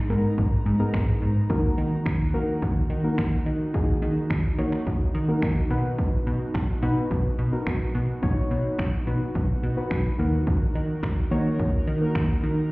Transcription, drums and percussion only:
0.38 kick
0.94 finger snap, kick
1.50 kick
2.06 finger snap, kick
2.62 kick
3.18 finger snap, kick
3.74 kick
4.30 finger snap, kick
4.72 finger snap
4.87 kick
5.42 finger snap, kick
5.99 kick
6.54 finger snap, kick
7.11 kick
7.67 finger snap, kick
8.23 kick
8.79 finger snap, kick
9.35 kick
9.91 finger snap, kick
10.47 kick
11.03 finger snap, kick
11.60 kick
12.15 finger snap, kick

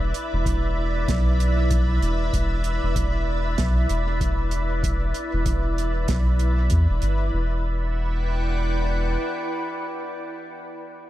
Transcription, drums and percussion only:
0.14 closed hi-hat
0.46 kick, closed hi-hat
1.08 kick, snare, closed hi-hat
1.40 closed hi-hat
1.71 kick, closed hi-hat
2.02 closed hi-hat
2.33 kick, closed hi-hat
2.64 closed hi-hat
2.96 kick, closed hi-hat
3.58 kick, snare, closed hi-hat
3.89 closed hi-hat
4.21 kick, closed hi-hat
4.51 closed hi-hat
4.83 kick, closed hi-hat
5.14 closed hi-hat
5.46 kick, closed hi-hat
5.78 closed hi-hat
6.08 kick, snare, closed hi-hat
6.39 closed hi-hat
6.70 kick, closed hi-hat
7.02 closed hi-hat

